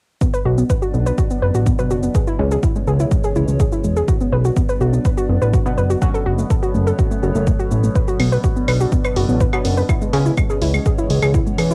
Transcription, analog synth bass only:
0.45 B1
0.94 B1
1.42 F#1
1.55 A1
1.91 F#1
2.39 C#2
2.87 C#2
3.36 C#2
3.48 C#2
3.84 E2
4.33 B1
4.81 B1
5.29 F#1
5.42 A1
5.78 F#1
6.26 F#1
6.74 F#1
7.23 F#1
7.35 F#1
7.71 A1
8.20 B1
8.68 B1
9.16 F#1
9.29 A1
9.65 F#1
10.13 C#2
10.62 C#2
11.10 C#2
11.22 C#2
11.58 E2

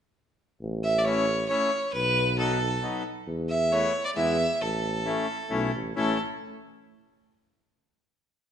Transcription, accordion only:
1.05 A3 C#4 E4
1.49 A3 C#4 E4
2.36 F#3 B3 D#4
2.81 F#3 B3 D#4
3.71 A3 B3 E4
4.15 G#3 B3 E4
5.05 A3 C#4 E4
5.50 A3 C#4 E4
5.96 A3 C#4 E4

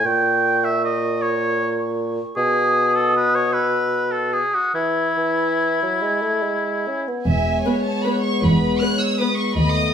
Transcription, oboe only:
0.06 G5
0.65 E5
0.85 D#5
1.22 C#5
2.36 G#4
2.95 A4
3.17 B4
3.35 C#5
3.53 B4
4.11 A4
4.33 G#4
4.55 F#4
4.75 E4

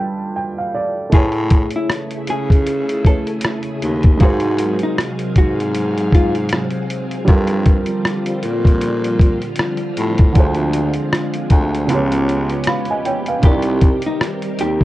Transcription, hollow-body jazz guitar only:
1.14 G#4
1.76 E4
2.30 G#4
3.07 A4
4.22 F#4
4.83 D#4
5.38 F#4
6.15 F4
13.45 G4
14.06 D#4
14.61 G4

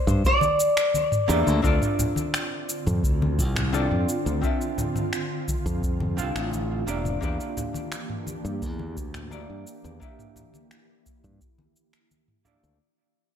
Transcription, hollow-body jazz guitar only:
Already playing: A#3 D4 E4 G4 E5
1.28 A#3 D4 E4 G4 D5
1.62 C4 D4 F4 A4 D5
3.73 C4 D4 F4 A4 D5
4.41 C4 D4 F4 A4 E5
6.17 C4 D4 F4 A4 F5
6.87 A#3 D4 E4 G4 D5
7.21 A#3 D4 E4 G4 D5
9.31 A#3 D4 E4 G4 D5
10.00 A#3 D4 E4 G4 E5
12.45 A#3 D4 E4 G4 D5

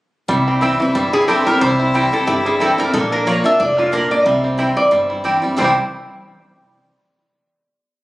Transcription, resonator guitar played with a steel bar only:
1.13 G#4
1.28 A4
1.47 A#4
1.61 C5
2.13 A4
2.27 G4
2.46 G#4
2.61 A4
2.80 A#4
2.94 A4
3.12 A#4
3.27 C#5
3.46 E5
3.60 D5
3.79 F4
3.94 A#4
4.11 D5
4.26 E5
4.77 D5
4.92 C5
5.58 C5

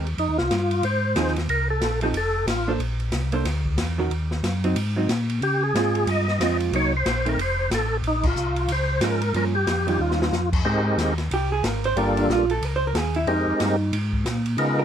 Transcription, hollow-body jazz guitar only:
1.16 F3 C4 D#4 G#4
2.02 F3 C4 D#4 A4
2.68 A#3 D4 A4 C5
3.33 A#3 D4 A4 C5
3.98 D#3 C#4 F#4 A#4
4.64 F#3 C4 D#4
4.96 F#3 C4 D#4
5.75 G#3 C4 F4
6.40 G#3 C4 F4
6.73 F#3 A#3 D#4
7.26 D#3 A3 C4
9.02 F3 G#3 C#4
9.35 F3 A#3 C#4
9.87 D#3 G3 C#4 F4
11.34 G4
11.52 G#4
11.66 A#4
11.85 C5
11.99 A#4
12.18 D4
12.33 F4
12.51 A4
12.65 A#4
12.76 C5
12.87 A#4
12.97 G#4
13.16 E4
13.30 D#4
14.79 A#4

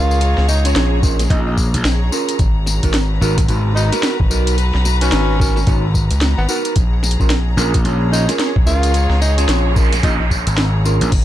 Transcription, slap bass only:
1.30 A#1
1.74 A#1
3.21 G#1
3.48 G#1
5.67 G#1
7.57 A#1
7.85 A#1
10.03 A#1
10.47 G#1
11.01 A#1

